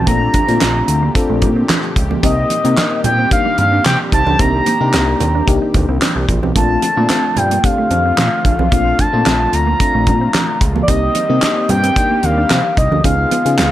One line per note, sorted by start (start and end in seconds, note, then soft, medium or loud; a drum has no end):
0.00 10.84 A#2 medium
0.00 2.19 D3 medium
0.00 2.19 F3 medium
0.00 2.19 A3 medium
0.07 0.29 A#1 loud
0.07 0.40 A3 medium
0.07 0.18 A#3 medium
0.07 0.39 C4 medium
0.07 0.39 D4 medium
0.07 0.40 F4 medium
0.07 6.52 G4 medium
0.07 1.11 A#5 loud
0.07 kick loud
0.07 closed hi-hat loud
0.07 muted conga medium
0.22 muted clean electric guitar stroke soft
0.34 0.45 D4 medium
0.34 kick medium
0.34 closed hi-hat medium
0.34 muted conga soft
0.48 0.59 A#2 medium
0.48 1.02 A3 medium
0.48 1.02 C4 medium
0.48 1.02 D4 medium
0.48 1.02 F4 medium
0.48 closed hi-hat soft
0.61 0.83 A#1 medium
0.61 0.72 C4 medium
0.61 snare loud
0.61 clap medium
0.61 closed hi-hat medium
0.61 high conga medium
0.76 muted clean electric guitar stroke soft
0.88 1.10 D2 medium
0.88 closed hi-hat medium
1.03 1.12 A#3 medium
1.15 2.01 C4 medium
1.15 2.01 D4 medium
1.15 2.01 F4 medium
1.15 2.01 A4 loud
1.15 kick loud
1.15 closed hi-hat medium
1.30 1.44 A#1 loud
1.30 1.39 A3 medium
1.42 1.64 A#2 medium
1.42 muted clean electric guitar stroke soft
1.42 kick medium
1.42 closed hi-hat medium
1.42 muted conga soft
1.42 low conga medium
1.56 1.66 C4 medium
1.69 1.80 D4 medium
1.69 snare loud
1.69 clap medium
1.69 closed hi-hat medium
1.69 high conga medium
1.84 muted clean electric guitar stroke soft
1.96 2.18 C#2 medium
1.96 kick medium
1.96 closed hi-hat medium
2.11 2.20 A#3 medium
2.11 high conga medium
2.23 2.45 C2 loud
2.23 6.52 D#3 medium
2.23 6.52 G3 medium
2.23 2.55 A#3 medium
2.23 2.55 C4 medium
2.23 6.52 C4 medium
2.23 2.34 C4 medium
2.23 2.56 D#4 medium
2.23 2.56 G4 medium
2.23 3.01 D#5 medium
2.23 kick loud
2.23 closed hi-hat loud
2.23 muted conga soft
2.50 muted clean electric guitar stroke soft
2.50 closed hi-hat medium
2.50 muted conga soft
2.64 2.75 C3 medium
2.64 3.18 A#3 medium
2.64 2.75 A#3 medium
2.64 3.18 C4 medium
2.64 3.18 D#4 medium
2.64 3.18 A#4 medium
2.64 closed hi-hat soft
2.77 2.89 D4 medium
2.77 snare loud
2.77 clap medium
2.77 closed hi-hat medium
2.77 high conga medium
2.92 muted clean electric guitar stroke soft
3.04 3.26 A#2 medium
3.04 3.30 G5 medium
3.04 closed hi-hat medium
3.04 muted conga soft
3.04 low conga medium
3.19 3.28 C4 medium
3.31 4.17 A#3 medium
3.31 4.17 D4 medium
3.31 4.17 D#4 medium
3.31 4.17 G4 medium
3.31 3.57 F5 medium
3.31 kick loud
3.31 closed hi-hat medium
3.46 3.55 A#3 medium
3.58 3.80 G2 medium
3.58 3.84 F5 medium
3.58 muted clean electric guitar stroke soft
3.58 closed hi-hat medium
3.58 muted conga soft
3.73 3.83 D4 medium
3.85 3.97 C3 loud
3.85 3.98 G5 loud
3.85 snare loud
3.85 clap medium
3.85 closed hi-hat medium
3.85 high conga medium
4.12 4.24 C2 medium
4.12 4.24 D#4 medium
4.12 4.42 A5 loud
4.12 kick medium
4.12 closed hi-hat medium
4.26 4.37 C#2 medium
4.26 4.37 D4 medium
4.26 high conga medium
4.39 4.61 C2 medium
4.39 4.72 A#3 medium
4.39 4.51 C4 medium
4.39 4.72 D4 medium
4.39 4.72 D#4 medium
4.39 4.72 G4 medium
4.39 5.48 A#5 loud
4.39 kick loud
4.39 closed hi-hat loud
4.39 muted conga medium
4.54 muted clean electric guitar stroke soft
4.66 4.78 A#3 medium
4.66 closed hi-hat medium
4.66 muted conga soft
4.80 4.95 C3 loud
4.80 5.34 A#3 medium
4.80 5.34 D4 medium
4.80 5.34 D#4 medium
4.80 5.34 G4 medium
4.93 5.15 C2 loud
4.93 5.05 C4 medium
4.93 snare loud
4.93 clap medium
4.93 closed hi-hat medium
4.93 high conga medium
5.08 muted clean electric guitar stroke soft
5.20 5.42 D#2 medium
5.20 closed hi-hat medium
5.20 low conga medium
5.35 5.45 D4 medium
5.47 5.59 C2 loud
5.47 6.33 A#3 medium
5.47 6.33 D4 medium
5.47 6.33 D#4 medium
5.47 6.33 G4 medium
5.47 kick loud
5.47 closed hi-hat medium
5.62 5.72 D#4 medium
5.74 5.86 D2 medium
5.74 muted clean electric guitar stroke soft
5.74 kick medium
5.74 closed hi-hat medium
5.74 muted conga soft
5.74 low conga medium
5.89 5.99 C2 medium
5.89 5.99 C4 medium
6.01 6.13 D4 medium
6.01 snare loud
6.01 clap medium
6.01 closed hi-hat medium
6.01 high conga medium
6.16 6.26 C2 medium
6.16 muted clean electric guitar stroke soft
6.28 6.40 A#1 medium
6.28 kick loud
6.28 closed hi-hat medium
6.28 high conga medium
6.43 6.53 B1 medium
6.43 6.53 C4 medium
6.43 high conga medium
6.55 6.77 A#1 loud
6.55 10.84 D3 medium
6.55 10.84 F3 medium
6.55 6.88 A3 medium
6.55 10.84 A3 medium
6.55 6.67 A#3 medium
6.55 6.88 C4 medium
6.55 6.88 D4 medium
6.55 6.88 F4 medium
6.55 10.84 F4 medium
6.55 7.39 A5 medium
6.55 kick loud
6.55 closed hi-hat loud
6.55 muted conga soft
6.82 muted clean electric guitar stroke soft
6.82 closed hi-hat medium
6.82 muted conga soft
6.97 7.07 A#2 loud
6.97 7.50 A3 medium
6.97 7.07 A3 medium
6.97 7.50 C4 medium
6.97 7.51 D4 medium
6.97 7.51 F4 medium
7.09 7.21 C4 medium
7.09 snare loud
7.09 clap medium
7.09 closed hi-hat medium
7.09 high conga medium
7.24 muted clean electric guitar stroke soft
7.36 7.58 G2 medium
7.36 7.66 G5 medium
7.36 closed hi-hat medium
7.36 low conga medium
7.51 7.61 A#3 medium
7.51 closed hi-hat medium
7.63 8.50 A3 medium
7.63 8.50 C4 medium
7.63 8.50 D4 medium
7.63 8.50 G4 medium
7.63 8.72 F5 medium
7.63 kick loud
7.63 closed hi-hat loud
7.78 7.88 A3 medium
7.91 8.12 F2 medium
7.91 muted clean electric guitar stroke soft
7.91 closed hi-hat medium
7.91 muted conga medium
8.06 8.15 C4 medium
8.18 8.29 A#2 loud
8.18 snare loud
8.18 clap medium
8.18 closed hi-hat medium
8.18 high conga medium
8.45 8.56 A#1 medium
8.45 8.56 D4 medium
8.45 kick medium
8.45 closed hi-hat medium
8.59 8.69 B1 loud
8.59 8.69 C4 medium
8.59 high conga medium
8.71 8.94 A#1 loud
8.71 9.04 A3 medium
8.71 8.83 A#3 medium
8.71 9.04 C4 medium
8.71 9.04 D4 medium
8.71 9.05 F4 medium
8.71 9.01 F5 medium
8.71 kick loud
8.71 closed hi-hat loud
8.71 muted conga soft
8.86 muted clean electric guitar stroke soft
8.99 9.10 D4 medium
8.99 9.56 A5 loud
8.99 kick medium
8.99 closed hi-hat medium
8.99 muted conga soft
9.13 9.24 A#2 medium
9.13 9.67 A3 medium
9.13 9.67 C4 medium
9.13 9.67 D4 medium
9.13 9.67 F4 medium
9.26 9.48 A#1 loud
9.26 9.37 C4 medium
9.26 snare loud
9.26 clap medium
9.26 closed hi-hat medium
9.26 high conga medium
9.40 muted clean electric guitar stroke soft
9.53 9.75 D2 medium
9.53 10.62 A#5 loud
9.53 closed hi-hat medium
9.67 9.77 A#3 medium
9.79 10.66 A3 medium
9.79 10.66 C4 medium
9.79 10.66 D4 medium
9.79 10.66 F4 medium
9.79 kick loud
9.79 closed hi-hat medium
9.94 10.08 A#1 loud
9.94 10.04 A3 medium
10.07 10.29 A#2 medium
10.07 kick medium
10.07 closed hi-hat medium
10.07 muted conga soft
10.07 low conga medium
10.21 10.31 C4 medium
10.34 10.45 D4 medium
10.34 snare loud
10.34 clap medium
10.34 closed hi-hat medium
10.34 high conga medium
10.48 muted clean electric guitar stroke soft
10.61 10.83 C#2 medium
10.61 kick loud
10.61 closed hi-hat medium
10.75 10.85 A#3 medium
10.75 high conga medium
10.82 10.90 D5 medium
10.88 11.10 C2 loud
10.88 13.02 D#3 medium
10.88 13.02 G3 medium
10.88 11.20 A#3 medium
10.88 13.02 A#3 medium
10.88 13.02 C4 medium
10.88 11.21 C4 medium
10.88 10.99 C4 medium
10.88 11.21 D#4 medium
10.88 13.02 G4 medium
10.88 11.21 G4 medium
10.88 11.70 D#5 medium
10.88 kick loud
10.88 closed hi-hat loud
10.88 muted conga medium
11.15 muted clean electric guitar stroke soft
11.15 closed hi-hat medium
11.15 muted conga soft
11.29 11.40 C3 loud
11.29 11.83 A#3 medium
11.29 11.40 A#3 medium
11.29 11.83 C4 medium
11.29 11.83 D#4 medium
11.29 11.83 G4 medium
11.42 11.54 D4 medium
11.42 snare loud
11.42 clap medium
11.42 closed hi-hat medium
11.42 high conga medium
11.57 muted clean electric guitar stroke soft
11.69 11.91 G2 medium
11.69 12.26 G5 loud
11.69 closed hi-hat medium
11.69 muted conga soft
11.69 low conga medium
11.84 11.93 C4 medium
11.84 closed hi-hat medium
11.96 12.82 A#3 medium
11.96 12.82 D4 medium
11.96 12.82 D#4 medium
11.96 12.82 G4 medium
11.96 kick loud
11.96 closed hi-hat medium
12.11 12.21 A#3 medium
12.23 12.45 D#2 medium
12.23 12.77 F5 loud
12.23 muted clean electric guitar stroke soft
12.23 closed hi-hat medium
12.23 muted conga soft
12.38 12.48 D4 medium
12.50 12.62 C3 loud
12.50 snare loud
12.50 clap medium
12.50 closed hi-hat medium
12.50 high conga medium
12.77 12.89 C2 medium
12.77 12.88 D#4 medium
12.77 13.03 D#5 medium
12.77 kick loud
12.77 closed hi-hat medium
12.91 13.02 D2 medium
12.91 13.02 D4 medium
12.91 high conga medium
13.04 13.26 C#2 loud
13.04 13.71 C#3 medium
13.04 13.71 F3 medium
13.04 13.71 G#3 medium
13.04 13.36 B3 medium
13.04 13.71 B3 medium
13.04 13.15 C#4 medium
13.04 13.37 D#4 medium
13.04 13.37 F4 medium
13.04 13.71 F4 medium
13.04 13.37 G#4 medium
13.04 13.71 F5 medium
13.04 kick loud
13.04 closed hi-hat medium
13.04 muted conga medium
13.19 muted clean electric guitar stroke soft
13.31 13.43 B3 medium
13.31 closed hi-hat medium
13.31 muted conga soft
13.45 13.59 C#3 loud
13.45 13.71 B3 medium
13.45 13.71 D#4 medium
13.45 13.71 F4 medium
13.45 13.71 G#4 medium
13.45 closed hi-hat soft
13.58 13.71 C#2 loud
13.58 13.70 G#3 medium
13.58 snare loud
13.58 clap medium
13.58 closed hi-hat medium
13.58 high conga medium